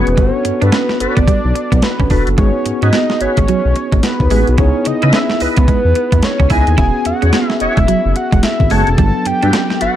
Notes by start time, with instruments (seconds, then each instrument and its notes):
Already playing: tine electric piano B3 C#4 F#4 G#4, analog synth lead B4
0.07 analog synth bass E1, closed hi-hat
0.17 analog synth bass G1, clean electric guitar G3, tine electric piano B3 D4 F#4 A4, analog synth lead C#5, kick, closed hi-hat
0.45 analog synth bass G2, muted clean electric guitar stroke, closed hi-hat
0.61 analog synth bass G2, clean electric guitar D4, tonewheel organ F#4 A4 B4, analog synth lead B4, closed hi-hat
0.72 clean electric guitar C#4, snare, closed hi-hat
0.89 muted clean electric guitar stroke, snare
1.00 analog synth bass G1, tonewheel organ F#4 A4 B4, analog synth lead D5, closed hi-hat
1.17 analog synth bass G1, clean electric guitar B3, kick, closed hi-hat
1.28 analog synth bass B1, clean electric guitar G3, kick, closed hi-hat
1.45 analog synth bass B1
1.55 muted clean electric guitar stroke, closed hi-hat
1.72 analog synth bass B1, clean electric guitar B3, kick, closed hi-hat
1.82 analog synth lead B4, muted clean electric guitar stroke, snare, closed hi-hat
2.00 analog synth bass G1, clean electric guitar C#4, kick
2.10 analog synth bass E1, tine electric piano B3 D4 F#4 A4, clean electric guitar D4, tonewheel organ F#4 A4 B4, analog synth lead B4, kick, open hi-hat
2.27 analog synth bass F#1, closed hi-hat
2.38 analog synth bass G#1, clean electric guitar G#3, tine electric piano B3 D#4 F#4 G#4, analog synth lead C#5, kick, closed hi-hat
2.66 analog synth bass G#2, muted clean electric guitar stroke, closed hi-hat
2.82 analog synth bass G#2, clean electric guitar C#4, tonewheel organ F#4 G#4 B4, analog synth lead D#5, closed hi-hat
2.93 clean electric guitar B3, snare, closed hi-hat
3.10 muted clean electric guitar stroke, snare
3.21 analog synth bass G#1, tonewheel organ F#4 G#4 B4, analog synth lead C#5, closed hi-hat
3.37 analog synth bass G#1, clean electric guitar G#3, kick, closed hi-hat
3.48 analog synth bass B1, clean electric guitar F#3, closed hi-hat
3.65 analog synth bass B1
3.76 muted clean electric guitar stroke, closed hi-hat
3.92 analog synth bass G#1, clean electric guitar G#3, kick, closed hi-hat
4.03 analog synth lead B4, snare, closed hi-hat
4.20 analog synth bass D#2, kick
4.30 analog synth bass A1, clean electric guitar G#3, tine electric piano B3 D#4 F#4 G#4, tonewheel organ F#4 G#4 B4, open hi-hat
4.47 analog synth bass B1, closed hi-hat
4.58 analog synth bass C#2, tine electric piano B3 D#4 E4 G#4, clean electric guitar C#4, analog synth lead C#5, kick, closed hi-hat
4.85 analog synth bass C#3, analog synth lead D#5, muted clean electric guitar stroke, closed hi-hat
5.02 analog synth bass C#3, tonewheel organ E4 B4 D#5, clean electric guitar E4, closed hi-hat
5.13 clean electric guitar C#4, analog synth lead E5, snare, closed hi-hat
5.30 muted clean electric guitar stroke, snare
5.40 analog synth bass C#2, tonewheel organ E4 B4 D#5, analog synth lead B4, open hi-hat
5.57 analog synth bass C#2, clean electric guitar B3, kick, closed hi-hat
5.68 analog synth bass E2, clean electric guitar G#3, kick, closed hi-hat
5.85 analog synth bass E2
5.95 muted clean electric guitar stroke, closed hi-hat
6.12 analog synth bass E2, clean electric guitar B3, kick, closed hi-hat
6.22 analog synth lead C#5, muted clean electric guitar stroke, snare, closed hi-hat
6.40 analog synth bass C#2, clean electric guitar C#4, kick
6.50 analog synth bass C#2, tine electric piano B3 D#4 E4 G#4, clean electric guitar E4, tonewheel organ E4 B4 D#5, analog synth lead G#5, kick, open hi-hat
6.67 analog synth bass D#2, closed hi-hat
6.78 analog synth bass E1, tine electric piano B3 C#4 F#4 G#4, clean electric guitar E4, analog synth lead G#5, kick, closed hi-hat
7.05 analog synth bass E2, analog synth lead F#5, muted clean electric guitar stroke, closed hi-hat
7.22 analog synth bass E2, clean electric guitar C#4, tonewheel organ F#4 G#4 C#5, closed hi-hat
7.33 clean electric guitar B3, snare, closed hi-hat
7.50 muted clean electric guitar stroke, snare
7.60 analog synth bass E1, tonewheel organ F#4 G#4 C#5, analog synth lead E5, closed hi-hat
7.77 analog synth bass E1, clean electric guitar G#3, kick, closed hi-hat
7.88 analog synth bass F#1, clean electric guitar F#3, closed hi-hat
8.06 analog synth bass F#1
8.16 analog synth lead F#5, muted clean electric guitar stroke, closed hi-hat
8.32 analog synth bass E1, clean electric guitar G#3, kick, closed hi-hat
8.43 analog synth lead E5, snare, closed hi-hat
8.60 analog synth bass G#1, kick
8.70 analog synth bass F#1, clean electric guitar G#3, tine electric piano B3 C#4 F#4 G#4, tonewheel organ F#4 G#4 C#5, analog synth lead A5, open hi-hat
8.87 analog synth bass E1, closed hi-hat
8.98 analog synth bass G1, tine electric piano F#3 B3 D4 A4, clean electric guitar G3, analog synth lead A5, kick, closed hi-hat
9.26 analog synth bass G2, analog synth lead G5, muted clean electric guitar stroke, closed hi-hat
9.42 analog synth bass G2, clean electric guitar D4, tonewheel organ F#4 A4 B4, closed hi-hat
9.53 clean electric guitar C#4, snare, closed hi-hat
9.70 muted clean electric guitar stroke, snare
9.81 analog synth bass G1, tonewheel organ F#4 A4 B4, analog synth lead F#5, closed hi-hat